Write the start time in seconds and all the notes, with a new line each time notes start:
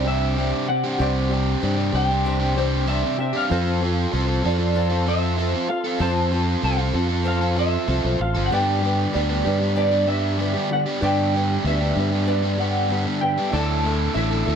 Already playing: C2 G4 C5 D5 D6
0.05 G3 C4 D4 G4 E5
0.36 C3 G3 C4 D4 G4
0.52 C4 D4 G4
0.67 C4 D4 G4 F#5, muted overdriven electric guitar stroke
0.84 C4 D4 G4
0.98 C2 C3 G3 C4 D4 G4 C5 D5
1.03 G4
1.29 G3 C4 D4 G4
1.34 G4
1.62 G2 C3 G3 C4 D4 G4
1.77 C4 D4 G4
1.93 C2 G3 C4 D4 G4 G5
2.09 C4 D4 G4
2.24 C3 G3 C4 D4 G4
2.40 C4 D4 G4
2.56 G3 C4 D4 G4 C5
2.87 C3 G3 C4 D4 G4 E5
3.03 C4 D4 G4
3.18 C4 D4 G4 E5, muted overdriven electric guitar stroke
3.33 C4 D4 G4 F5
3.49 F2 F3 C4 F4 A4 C5 C6
3.81 F3 C4 F4 A4
4.12 C2 F3 C4 F4 A4
4.27 C4 F4 A4
4.43 F2 F3 C4 F4 A4 D5
4.59 C4 F4 A4
4.74 F3 C4 F4 A4
4.90 C4 F4 A4
5.06 F3 C4 F4 A4 E5
5.37 F3 C4 F4 A4
5.54 C4 F4 A4
5.69 C4 F4 A4 F5, muted overdriven electric guitar stroke
5.84 C4 F4 A4
5.99 F2 F3 C4 F4 A4 C5 A5
6.30 F3 C4 F4 A4
6.62 C2 F3 C4 F4 A4 F5
6.78 C4 F4 A4
6.94 F2 F3 C4 F4 A4
7.09 C4 F4 A4
7.24 F3 C4 F4 A4 F5
7.41 C4 F4 A4
7.56 F3 C4 F4 A4 E5
7.88 C2 F3 C4 F4 A4
8.04 B1 C4 F4 A4
8.19 A1 C4 F4 A4 F5, muted overdriven electric guitar stroke
8.35 G1 C4 F4 A4
8.46 F#5
8.50 G2 D3 G3 B3 D4 G4 B4 D5 G5 B5
8.82 G3 B3 D4 G4
9.13 D2 G2 D3 G3 B3 D4 G4 D5
9.29 G3 B3 D4 G4
9.44 G2 G3 B3 D4 G4
9.59 G3 B3 D4 G4
9.75 G2 D3 G3 B3 D4 G4 D5
9.91 G3 B3 D4 G4
10.07 G3 B3 D4 G4 E5
10.38 G2 D3 G3 B3 D4 G4
10.54 G3 B3 D4 G4
10.71 G3 B3 D4 G4 F#5, muted overdriven electric guitar stroke
10.86 G3 B3 D4 G4
11.00 G2 D3 G3 B3 D4 G4 B4 D5 E5
11.04 G5
11.33 G3 B3 D4 G4
11.64 D2 G2 D3 G3 B3 D4 G4 E5
11.80 G3 B3 D4 G4
11.96 G2 G3 B3 D4 G4
12.11 G3 B3 D4 G4
12.27 G2 D3 G3 B3 D4 G4 D5
12.43 G3 B3 D4 G4
12.58 G3 B3 D4 G4 F#5
12.89 G2 D3 G3 B3 D4 G4
13.06 G3 B3 D4 G4
13.20 G3 B3 D4 G4 G5, muted overdriven electric guitar stroke
13.38 G3 B3 D4 G4
13.50 D2 D3 E4 A4 D5 A5 D6
13.54 A3 E4 A4
13.84 D3 A3 E4 A4
14.14 A1 D3 A3 E4 A4 E5
14.30 A3 E4 A4
14.46 D2 D3 A3 E4 A4